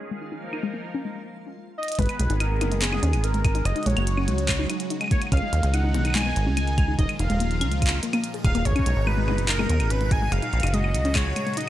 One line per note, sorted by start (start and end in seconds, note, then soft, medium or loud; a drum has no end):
0.00 0.30 D#3 medium
0.00 0.30 G#3 medium
0.00 0.30 C#4 medium
0.00 1.15 F4 medium
0.00 0.30 G#4 medium
0.00 1.15 F5 medium
0.11 0.16 G#3 medium
0.22 0.31 D#4 medium
0.32 1.15 F3 medium
0.32 1.15 A#3 medium
0.32 0.37 D#4 medium
0.32 1.15 D#4 medium
0.32 1.15 A#4 medium
0.53 0.61 D#4 medium
0.53 claves soft
0.63 0.71 G#3 loud
0.74 0.84 A#3 medium
0.94 1.04 C#4 loud
1.05 1.13 G#3 medium
1.78 2.00 D#5 loud
1.83 closed hi-hat medium
1.88 closed hi-hat medium
1.92 closed hi-hat medium
1.95 2.07 G#1 loud
1.95 2.07 G#3 medium
1.95 11.69 G#4 medium
1.95 2.42 B4 loud
1.95 11.69 A#5 medium
1.95 kick medium
1.95 closed hi-hat soft
1.99 3.64 D#3 medium
1.99 5.29 G#3 medium
1.99 3.64 B3 medium
1.99 3.64 G#4 medium
1.99 closed hi-hat medium
2.02 closed hi-hat soft
2.06 closed hi-hat soft
2.09 closed hi-hat soft
2.09 claves medium
2.19 2.28 B1 loud
2.19 2.24 G#3 medium
2.19 closed hi-hat medium
2.30 2.63 G#1 loud
2.30 2.39 D#4 medium
2.30 closed hi-hat medium
2.40 2.45 D#4 medium
2.40 2.81 A#4 loud
2.40 closed hi-hat medium
2.40 claves medium
2.61 3.00 F#1 medium
2.61 2.69 D#4 medium
2.61 closed hi-hat medium
2.61 high tom medium
2.61 claves medium
2.72 2.80 G#3 loud
2.72 closed hi-hat medium
2.82 2.92 B3 medium
2.82 3.25 G#4 loud
2.82 clap loud
2.82 closed hi-hat medium
2.92 high tom medium
2.92 claves medium
3.03 3.15 D#2 loud
3.03 3.13 C#4 loud
3.03 closed hi-hat medium
3.13 3.63 G#1 medium
3.13 3.21 G#3 medium
3.13 closed hi-hat medium
3.13 claves medium
3.24 3.67 A#4 loud
3.24 closed hi-hat medium
3.34 3.39 G#3 medium
3.34 closed hi-hat soft
3.44 3.54 D#4 medium
3.44 kick loud
3.44 closed hi-hat medium
3.44 claves medium
3.55 3.60 D#4 medium
3.55 closed hi-hat medium
3.65 3.74 F#1 loud
3.65 6.95 C#3 medium
3.65 5.30 F#3 medium
3.65 5.30 F#4 medium
3.65 3.88 D#5 loud
3.65 closed hi-hat medium
3.65 claves medium
3.76 3.84 D#4 medium
3.76 closed hi-hat soft
3.83 3.95 A#1 loud
3.83 3.94 G#3 medium
3.83 closed hi-hat soft
3.86 4.70 C#5 loud
3.86 closed hi-hat medium
3.90 closed hi-hat soft
3.96 4.29 F#1 loud
3.96 4.07 A#3 medium
3.96 closed hi-hat medium
3.96 claves medium
4.07 closed hi-hat medium
4.17 4.27 C#4 loud
4.17 claves medium
4.28 4.67 C#2 medium
4.28 4.36 G#3 medium
4.28 closed hi-hat medium
4.38 closed hi-hat medium
4.49 4.54 G#3 medium
4.49 kick medium
4.49 clap loud
4.49 closed hi-hat medium
4.49 claves medium
4.59 4.68 D#4 medium
4.70 4.74 D#4 medium
4.70 closed hi-hat medium
4.70 claves medium
4.80 closed hi-hat medium
4.90 4.98 D#4 medium
4.90 closed hi-hat medium
5.01 5.09 G#3 loud
5.01 closed hi-hat soft
5.01 claves medium
5.04 claves medium
5.08 5.21 A#3 medium
5.08 5.21 C#5 medium
5.08 kick loud
5.08 closed hi-hat medium
5.08 claves soft
5.22 closed hi-hat medium
5.22 claves soft
5.27 claves soft
5.32 5.41 C#2 loud
5.32 8.62 D#3 medium
5.32 6.97 G#3 medium
5.32 5.42 C#4 loud
5.32 6.97 D#4 medium
5.32 5.75 F5 loud
5.32 kick medium
5.32 closed hi-hat medium
5.32 claves soft
5.37 closed hi-hat soft
5.37 claves soft
5.42 5.51 G#3 medium
5.53 5.62 D#2 loud
5.53 closed hi-hat medium
5.63 5.96 C#2 loud
5.63 5.68 G#3 medium
5.63 closed hi-hat medium
5.74 5.83 D#4 medium
5.74 6.15 F#5 loud
5.74 closed hi-hat medium
5.74 claves medium
5.84 5.89 D#4 medium
5.94 6.34 B1 medium
5.94 closed hi-hat medium
5.94 high tom medium
6.05 6.13 D#4 medium
6.05 closed hi-hat medium
6.05 claves soft
6.08 claves soft
6.10 claves soft
6.13 6.23 G#3 loud
6.13 clap loud
6.13 closed hi-hat medium
6.13 claves medium
6.15 6.54 G#5 loud
6.15 claves medium
6.18 high tom medium
6.18 claves medium
6.21 claves medium
6.23 6.36 B3 medium
6.23 claves medium
6.26 claves soft
6.29 claves soft
6.33 6.48 G#1 loud
6.33 closed hi-hat medium
6.33 claves soft
6.46 6.96 C#2 medium
6.46 6.56 C#4 medium
6.57 6.65 G#3 medium
6.57 6.96 G#5 loud
6.57 closed hi-hat medium
6.57 claves medium
6.67 closed hi-hat soft
6.78 6.83 G#3 medium
6.78 kick loud
6.78 closed hi-hat medium
6.78 claves medium
6.88 6.97 D#4 medium
6.99 7.08 D#1 loud
6.99 11.69 A#2 medium
6.99 8.64 F3 medium
6.99 7.03 D#4 medium
6.99 8.64 F4 medium
6.99 7.08 D#5 loud
6.99 kick medium
6.99 closed hi-hat medium
7.09 closed hi-hat soft
7.09 claves medium
7.19 7.28 F1 loud
7.19 7.28 D#4 medium
7.19 7.99 F5 loud
7.19 closed hi-hat medium
7.30 7.63 D#1 loud
7.30 7.38 G#3 loud
7.30 closed hi-hat medium
7.40 7.50 A#3 medium
7.40 closed hi-hat medium
7.51 closed hi-hat soft
7.61 8.00 C#2 medium
7.61 7.71 C#4 loud
7.61 closed hi-hat medium
7.61 claves medium
7.72 7.80 G#3 medium
7.72 closed hi-hat medium
7.82 kick medium
7.82 closed hi-hat medium
7.82 claves medium
7.87 clap loud
7.92 7.97 G#3 medium
8.03 8.11 A#3 medium
8.03 closed hi-hat medium
8.13 8.18 A#3 loud
8.13 closed hi-hat medium
8.13 claves medium
8.24 closed hi-hat medium
8.34 8.39 G#4 medium
8.34 closed hi-hat soft
8.44 8.53 D#1 medium
8.44 8.49 A#3 medium
8.44 8.67 F5 loud
8.44 kick loud
8.44 closed hi-hat medium
8.44 claves medium
8.55 8.64 D#1 medium
8.55 8.63 A#3 loud
8.55 closed hi-hat medium
8.65 8.74 G#1 loud
8.65 10.30 B2 medium
8.65 10.30 G#3 medium
8.65 10.30 D#4 medium
8.65 9.09 C#5 loud
8.65 kick soft
8.65 closed hi-hat medium
8.72 8.86 C#4 loud
8.72 kick medium
8.72 closed hi-hat soft
8.72 claves medium
8.79 kick medium
8.86 8.95 B1 loud
8.86 8.94 G#3 medium
8.86 closed hi-hat medium
8.96 9.29 G#1 loud
9.07 9.12 G#3 medium
9.07 9.48 B4 loud
9.07 claves medium
9.17 9.25 G#3 medium
9.28 9.67 F#1 medium
9.28 9.33 D#4 medium
9.28 high tom medium
9.28 claves medium
9.38 closed hi-hat medium
9.49 9.57 D#4 medium
9.49 9.92 A#4 loud
9.49 clap loud
9.49 closed hi-hat medium
9.59 9.67 G#3 loud
9.59 high tom medium
9.59 claves medium
9.69 9.81 D#2 loud
9.69 9.79 B3 medium
9.69 closed hi-hat medium
9.80 10.29 G#1 medium
9.80 closed hi-hat medium
9.80 claves medium
9.90 10.00 C#4 loud
9.90 10.13 B4 loud
9.90 closed hi-hat medium
10.01 10.09 G#3 medium
10.01 closed hi-hat soft
10.11 10.34 G#5 loud
10.11 kick loud
10.11 closed hi-hat medium
10.22 10.26 G#3 medium
10.32 10.41 F#1 loud
10.32 11.69 C#3 medium
10.32 11.69 F#3 medium
10.32 10.40 G#3 medium
10.32 11.69 F#4 medium
10.32 10.75 F5 loud
10.32 closed hi-hat medium
10.32 claves medium
10.42 10.47 D#4 medium
10.42 closed hi-hat soft
10.53 10.62 A#1 medium
10.53 closed hi-hat soft
10.60 10.96 F#1 loud
10.60 closed hi-hat soft
10.63 10.71 D#4 medium
10.63 closed hi-hat medium
10.63 claves medium
10.67 closed hi-hat medium
10.74 10.82 G#3 loud
10.74 11.17 D#5 loud
10.74 closed hi-hat medium
10.84 10.94 A#3 medium
10.84 claves medium
10.94 11.34 C#2 medium
10.94 closed hi-hat medium
11.05 11.15 C#4 loud
11.05 closed hi-hat medium
11.15 11.23 G#3 medium
11.15 11.59 C#5 loud
11.15 kick medium
11.15 clap loud
11.15 closed hi-hat medium
11.15 claves medium
11.36 11.41 G#3 medium
11.36 closed hi-hat medium
11.36 claves medium
11.47 11.55 G#3 medium
11.47 closed hi-hat soft
11.54 11.62 D#4 medium
11.54 closed hi-hat soft
11.57 11.69 D#5 loud
11.57 closed hi-hat medium
11.61 closed hi-hat soft